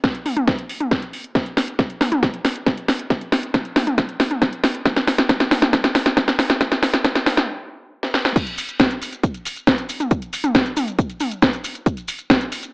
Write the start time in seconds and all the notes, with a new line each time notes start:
0.04 kick, snare, closed hi-hat
0.15 closed hi-hat
0.26 open hi-hat, mid tom
0.37 closed hi-hat, mid tom
0.48 kick, snare, closed hi-hat
0.59 closed hi-hat
0.69 open hi-hat
0.80 closed hi-hat, mid tom
0.91 kick, snare, closed hi-hat
1.02 closed hi-hat
1.13 open hi-hat
1.24 closed hi-hat
1.35 kick, snare, closed hi-hat
1.46 closed hi-hat
1.57 snare, open hi-hat
1.68 closed hi-hat
1.79 kick, snare, closed hi-hat
1.90 closed hi-hat
2.01 snare, open hi-hat, mid tom
2.12 closed hi-hat, mid tom
2.23 kick, snare, closed hi-hat
2.34 closed hi-hat
2.45 snare, open hi-hat
2.56 closed hi-hat
2.66 kick, snare, closed hi-hat
2.77 closed hi-hat
2.88 snare, open hi-hat
2.99 closed hi-hat
3.10 kick, snare, closed hi-hat
3.21 closed hi-hat
3.32 snare, open hi-hat
3.43 closed hi-hat
3.54 kick, snare, closed hi-hat
3.65 closed hi-hat
3.76 snare, open hi-hat, mid tom
3.87 closed hi-hat, mid tom
3.98 kick, snare, closed hi-hat
4.09 closed hi-hat
4.20 snare, open hi-hat
4.31 closed hi-hat, mid tom
4.42 kick, snare, closed hi-hat
4.53 closed hi-hat
4.64 snare, open hi-hat
4.75 closed hi-hat
4.85 kick, snare, closed hi-hat
4.96 snare, closed hi-hat
5.07 snare, open hi-hat
5.18 snare, closed hi-hat
5.29 kick, snare, closed hi-hat
5.40 snare, closed hi-hat
5.51 snare, open hi-hat, mid tom
5.62 snare, closed hi-hat, mid tom
5.73 kick, snare, closed hi-hat
5.84 snare, closed hi-hat
5.95 snare, open hi-hat
6.06 snare, closed hi-hat
6.17 kick, snare, closed hi-hat
6.28 snare, closed hi-hat
6.39 snare, open hi-hat
6.50 snare, closed hi-hat
6.61 kick, snare, closed hi-hat
6.72 snare, closed hi-hat
6.83 snare, open hi-hat
6.94 snare, closed hi-hat
7.04 kick, snare, closed hi-hat
7.15 snare, closed hi-hat
7.26 snare, open hi-hat, mid tom
7.37 snare, closed hi-hat, mid tom
8.03 snare
8.14 snare
8.25 snare
8.36 kick, closed hi-hat, crash, maracas
8.47 closed hi-hat, maracas
8.58 open hi-hat, maracas
8.69 closed hi-hat, maracas
8.79 kick, snare, closed hi-hat, maracas
8.90 closed hi-hat, maracas
9.02 open hi-hat, maracas
9.13 closed hi-hat, maracas
9.23 kick, closed hi-hat, maracas
9.34 closed hi-hat, maracas
9.45 open hi-hat, maracas
9.56 closed hi-hat, maracas
9.67 kick, snare, closed hi-hat, maracas
9.78 closed hi-hat, maracas
9.89 open hi-hat, maracas
10.00 closed hi-hat, mid tom, maracas
10.11 kick, closed hi-hat, maracas
10.22 closed hi-hat, maracas
10.33 open hi-hat, maracas
10.44 closed hi-hat, mid tom, maracas
10.55 kick, snare, closed hi-hat, maracas
10.66 closed hi-hat, maracas
10.77 open hi-hat, mid tom, maracas
10.88 closed hi-hat, maracas
10.99 kick, closed hi-hat, maracas
11.10 closed hi-hat, maracas
11.20 open hi-hat, mid tom, maracas
11.31 closed hi-hat, maracas
11.42 kick, snare, closed hi-hat, maracas
11.53 closed hi-hat, maracas
11.64 open hi-hat, maracas
11.75 closed hi-hat, maracas
11.86 kick, closed hi-hat, maracas
11.97 closed hi-hat, maracas
12.08 open hi-hat, maracas
12.18 closed hi-hat, maracas
12.30 kick, snare, closed hi-hat, maracas
12.41 closed hi-hat, maracas
12.52 open hi-hat, maracas
12.63 closed hi-hat, maracas